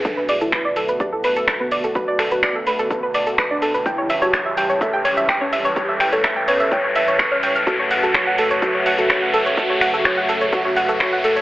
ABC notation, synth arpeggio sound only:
X:1
M:4/4
L:1/16
Q:1/4=126
K:Bm
V:1 name="Synth arpeggio sound"
A B d A B d A B d A B A A B d A | B d A B d A B A A B d A B d A B | g c e c c e g c e g c e g c e c | c e g c e g c e g c e c c' ^e' g e' |
A c f A c f A c A c f A c f A c | A c f A c f A c A c f A c f A c |]